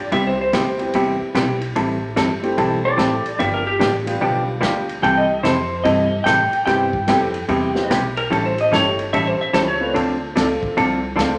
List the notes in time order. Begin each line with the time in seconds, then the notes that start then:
Already playing: D5
0.12 C2 C3 G3 B3 E4 G4 E5, kick, ride
0.27 C5
0.41 C5
0.53 D2 C3 G3 B3 E4 G4, kick, snare, hi-hat pedal, ride
0.79 G3 B3 C4 E4 G4, ride
0.93 E2 C3 G3 B3 E4 G4, kick, ride
1.20 muted upright bass stroke
1.34 B1 C3 G3 B3 C4 E4 G4, kick, snare, hi-hat pedal, ride
1.61 ride
1.76 A1 E3 G3 C4 E4 A4, kick, ride
2.16 G1 E3 G3 C4 E4 A4, kick, snare, hi-hat pedal, ride
2.42 G3 A3 C4 E4 G4, ride
2.58 B1 E3 G3 C4 E4 A4, kick, ride
2.85 D5
2.97 A1 E3 G3 A3 C4 E4 G4 A4, kick, snare, hi-hat pedal, ride
3.25 muted upright bass stroke, ride
3.39 G1 D3 F3 B3 D4 G4 E5, kick, ride
3.54 A#4
3.67 G4
3.79 A1 D3 F3 B3 D4 G4, kick, snare, hi-hat pedal, ride
4.06 G3 B3 D4 F4 G4, ride
4.21 B1 D3 F3 B3 D4 G4, kick
4.61 D2 D3 F3 G3 B3 D4 F4 G4, kick, snare, hi-hat pedal, ride
4.89 ride
5.02 C2 C3 E3 G3 C4 E4 A4 G5, kick, ride
5.17 D#5
5.43 F2 C3 E3 G3 C4 E4 A4 C5, kick, snare, hi-hat pedal, ride
5.84 G2 C3 E3 G3 C4 E4 A4 D#5, kick, ride
6.24 A2 C3 E3 G3 C4 E4 A4 G5, kick, snare, hi-hat pedal, ride
6.52 muted upright bass stroke, ride
6.66 G2 C3 G3 B3 C4 E4 G4 G5, kick, snare, ride
6.93 kick
7.07 F2 C3 G3 B3 C4 E4 G4 A4, kick, snare, hi-hat pedal, ride
7.34 ride
7.48 E2 C3 G3 B3 E4 G4, kick, ride
7.75 G3 B3 C4 E4 G4, snare
7.90 B1 C3 G3 B3 E4 G4, kick, snare, hi-hat pedal, ride
8.17 A#4, ride
8.30 A1 E3 G3 C#4 E4 A4, kick, ride
8.45 C5
8.58 D#5, ride
8.72 G1 E3 G3 A3 C#4 E4 G4 A4 C#5, kick, snare, hi-hat pedal, ride
8.99 ride
9.13 A1 E3 G3 C#4 E4 A4 E5, kick, ride
9.27 C5
9.39 E5, muted upright bass stroke
9.53 C#2 E3 G3 C#4 E4 A4 C5, kick, snare, hi-hat pedal, ride
9.68 C#5
9.80 A3 C4 D4 F4 B4
9.94 D2 D3 F3 C4 D4 A4, kick, ride
10.36 C#2 D3 F3 A3 C4 D4 F4 A4, kick, snare, hi-hat pedal, ride
10.63 muted upright bass stroke, kick
10.77 C2 D3 F3 C4 D4 A4, kick, ride
11.16 D2 D3 F3 A3 C4 D4 F4 A4, kick, snare, hi-hat pedal, ride